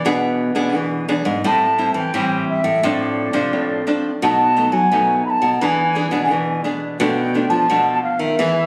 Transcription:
0.05 nylon-string guitar B2 E3 B3 D4 G#4, flute B4
0.55 nylon-string guitar B2 B3 D4 G#4
0.75 nylon-string guitar B2 E3
1.08 nylon-string guitar E2 B3 D4 G#4
1.25 nylon-string guitar G#2
1.44 nylon-string guitar A2 G3 C4 E4, flute A5
1.78 nylon-string guitar G3 C4 E4
1.94 nylon-string guitar E3, flute G5
2.14 nylon-string guitar A2 E3 G3 C4 E4
2.49 flute E5
2.64 nylon-string guitar A2
2.83 nylon-string guitar A2 F3 C4 D4, flute D5
3.33 nylon-string guitar C3 F3 C4 D4
3.52 nylon-string guitar A2
3.87 nylon-string guitar F3 C4 D4
4.22 nylon-string guitar B2 F#3 A3 D#4, flute A5
4.56 nylon-string guitar F#3 A3 D#4
4.72 nylon-string guitar F#3, flute G#5
4.92 nylon-string guitar F#2 B2 F#3 A3 D#4
5.25 flute B5
5.29 flute A5
5.42 nylon-string guitar B2
5.60 nylon-string guitar E3 B3 D4 G#4, flute G#5 B5
5.95 nylon-string guitar B3 D4 G#4
6.11 nylon-string guitar B2 B3 D4 G#4
6.31 nylon-string guitar B2 E3
6.64 nylon-string guitar B3 D4 G#4
7.00 nylon-string guitar B2 F3 A3 D4, flute G5
7.34 nylon-string guitar F3 A3 D4
7.49 nylon-string guitar F3, flute A5
7.70 nylon-string guitar B2 F3 A3 D4
8.02 flute F5
8.19 nylon-string guitar D#3, flute E5
8.39 nylon-string guitar E3 B3 E4 G#4

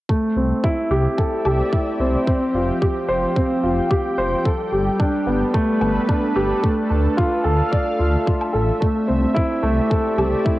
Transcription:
0.09 grand piano A3, analog synth pad C4, kick
0.36 detuned saw bass C2, grand piano C4
0.64 grand piano E4, kick
0.68 analog synth pad G4
0.90 detuned saw bass C2, grand piano G4
1.09 analog synth pad D5 E5
1.18 grand piano A4, kick
1.45 detuned saw bass C2, grand piano G4, low woodblock
1.73 grand piano E4, kick
2.00 detuned saw bass C2, grand piano C4
2.26 analog synth pad F3, grand piano C4, kick
2.54 detuned saw bass F1, grand piano F4
2.82 grand piano G4, kick
3.08 detuned saw bass F1, grand piano C5
3.25 analog synth pad G5
3.36 grand piano C4, kick
3.63 detuned saw bass F1, grand piano F4
3.90 grand piano G4, kick
4.18 detuned saw bass F1, grand piano C5
4.45 analog synth pad G3, grand piano A4, kick
4.72 detuned saw bass G1, grand piano G4
4.93 analog synth pad D4
5.00 grand piano D4, kick
5.26 detuned saw bass G1, grand piano B3
5.43 analog synth pad A4 B4
5.54 grand piano A3, kick
5.81 detuned saw bass G1, grand piano B3, low woodblock
6.09 grand piano D4, kick
6.36 detuned saw bass G1, grand piano G4
6.63 grand piano A3, kick
6.90 detuned saw bass D2, grand piano D4
7.17 grand piano F4, kick
7.36 analog synth pad F5
7.44 detuned saw bass D2, grand piano A4
7.62 analog synth pad E5
7.72 grand piano D5, kick
7.99 detuned saw bass D2, grand piano F4
8.26 grand piano F4, kick
8.41 low woodblock
8.53 detuned saw bass A1, grand piano A4
8.80 grand piano A3, analog synth pad C4, kick
9.08 detuned saw bass C2, grand piano C4
9.30 grand piano E4, analog synth pad G4 D5
9.36 kick
9.63 detuned saw bass C2, grand piano A3
9.90 grand piano A4, kick
10.18 detuned saw bass C2, grand piano G4, low woodblock
10.45 grand piano E4, kick

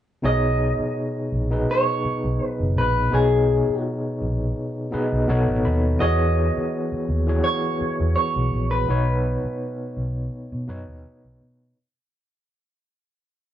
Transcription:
0.22 fingered electric bass B1, tine electric piano B2 B3 D#4 G#4 C#5, clean electric guitar D#5
0.79 muted fingered electric bass stroke
1.32 fingered electric bass A#1
1.50 tine electric piano B2 B3 D#4 G#4 B4
1.71 clean electric guitar C#5
2.05 muted fingered electric bass stroke
2.24 fingered electric bass B1
2.47 clean electric guitar B4
2.60 fingered electric bass F#1
2.76 fingered electric bass A#1, clean electric guitar B4
3.11 fingered electric bass B1, tine electric piano B2 B3 D#4 G#4 C#5, clean electric guitar G#4
3.69 muted fingered electric bass stroke
4.21 fingered electric bass A#1
4.91 tine electric piano B2 B3 D#4 G#4 B4 D#5, muted fingered electric bass stroke
5.12 fingered electric bass B1
5.28 fingered electric bass B1, tine electric piano B2 B3 D#4 A4 C#5 F#5
5.48 fingered electric bass A1
5.65 fingered electric bass D#2, tine electric piano B5
5.99 fingered electric bass E2, tine electric piano E3 B3 F#4 G#4 C#5, clean electric guitar D#5
6.56 muted fingered electric bass stroke
6.92 muted fingered electric bass stroke
7.09 fingered electric bass D#2
7.27 tine electric piano E3 B3 F#4 G#4 C#5
7.44 clean electric guitar C#5
7.81 muted fingered electric bass stroke
8.00 fingered electric bass E2
8.16 clean electric guitar C#5
8.36 fingered electric bass B1
8.53 fingered electric bass A#1
8.71 clean electric guitar B4
8.88 fingered electric bass B1, tine electric piano B2 B3 D#4 B4 C#5
9.44 muted fingered electric bass stroke
9.97 fingered electric bass B1
10.52 fingered electric bass B2
10.67 fingered electric bass F#2, tine electric piano B2 B3 D#4 B4 C#5
10.88 fingered electric bass D#2
11.05 muted fingered electric bass stroke
11.24 fingered electric bass B1
11.41 fingered electric bass B2

